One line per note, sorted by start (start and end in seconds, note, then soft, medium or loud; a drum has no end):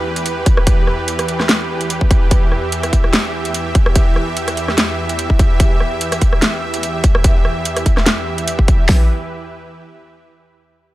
0.00 8.85 E2 medium
0.00 8.85 E3 medium
0.00 8.85 G4 medium
0.00 2.29 B4 medium
0.16 closed hi-hat soft
0.26 closed hi-hat medium
0.46 kick loud
0.46 closed hi-hat medium
0.57 cross-stick medium
0.67 kick loud
0.67 closed hi-hat medium
0.87 cross-stick soft
1.08 closed hi-hat medium
1.19 cross-stick medium
1.19 closed hi-hat soft
1.28 closed hi-hat medium
1.40 cross-stick soft
1.40 snare soft
1.49 snare loud
1.49 closed hi-hat medium
1.81 closed hi-hat soft
1.90 closed hi-hat medium
2.01 kick medium
2.11 kick loud
2.11 closed hi-hat soft
2.31 8.87 E5 medium
2.31 kick loud
2.31 closed hi-hat medium
2.52 cross-stick soft
2.72 closed hi-hat medium
2.83 cross-stick soft
2.83 closed hi-hat soft
2.93 kick medium
2.93 closed hi-hat soft
3.04 cross-stick soft
3.13 snare loud
3.13 closed hi-hat medium
3.45 closed hi-hat soft
3.54 closed hi-hat medium
3.75 kick loud
3.75 closed hi-hat medium
3.86 cross-stick medium
3.95 kick loud
3.95 closed hi-hat medium
4.16 cross-stick soft
4.37 closed hi-hat medium
4.48 cross-stick medium
4.48 closed hi-hat medium
4.57 closed hi-hat soft
4.68 cross-stick medium
4.68 snare soft
4.78 snare loud
4.78 closed hi-hat medium
5.09 closed hi-hat soft
5.19 closed hi-hat medium
5.30 kick medium
5.39 kick loud
5.39 closed hi-hat soft
5.60 kick loud
5.60 closed hi-hat medium
5.80 cross-stick medium
6.01 closed hi-hat medium
6.12 cross-stick medium
6.12 closed hi-hat medium
6.21 kick medium
6.21 closed hi-hat medium
6.33 cross-stick medium
6.42 snare loud
6.42 closed hi-hat medium
6.74 closed hi-hat soft
6.83 closed hi-hat medium
7.04 kick loud
7.04 closed hi-hat medium
7.15 cross-stick medium
7.24 kick loud
7.24 closed hi-hat medium
7.45 cross-stick medium
7.65 closed hi-hat medium
7.76 cross-stick medium
7.76 closed hi-hat medium
7.86 kick medium
7.86 closed hi-hat medium
7.97 cross-stick medium
7.97 snare soft
8.06 snare loud
8.06 closed hi-hat medium
8.38 closed hi-hat soft
8.48 closed hi-hat medium
8.59 kick medium
8.68 kick loud
8.68 closed hi-hat medium
8.89 9.08 E3 medium
8.89 9.08 E4 medium
8.89 9.08 G4 medium
8.89 9.08 B4 medium
8.89 kick loud
8.89 snare loud
8.89 open hi-hat medium